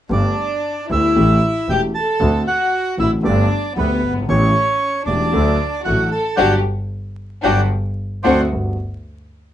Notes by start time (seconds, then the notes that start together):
0.09 G1 G2 D3 A3 B3 D4 G4 D5
0.89 D2 D3 A3 B3 E4 G4 E5
1.15 A1 A2 E3 A3 C#4 G4
1.68 E1 E2 E3 A3 C#4 G4 G5
1.95 A4 A5
2.20 D2 D3 A3 C4 F#4
2.47 F#4 F#5
2.97 A1 A2 D3 A3 C4 E4 F#4 E5
3.23 G1 G2 D3 A3 B3 D4 G4 D5
3.76 D2 D3 A3 B3 G4 B4
4.02 G1
4.09 F#1
4.16 G1
4.22 G#1
4.28 A1 A2 E3 A3 C#4 G4 C#5
5.05 E1 E2 E3 A3 C#4 D4 G4 D5
5.33 D2 D3 F#3 A3 D4 A4
5.84 A1 A2 F#3 A3 D4 F#4 A4 F#5
6.11 A4 A5
6.36 G1 D3 F#3 G3 D4 F#4 G4 D5 F#5 G5
7.43 G1 D3 F#3 G3 D4 F#4 G4 D5 F#5 G5
8.23 D2 D3 F#3 A3 C4 D4 F#4 C5 D5 F#5
8.52 G1 G2 G3 B3 F#4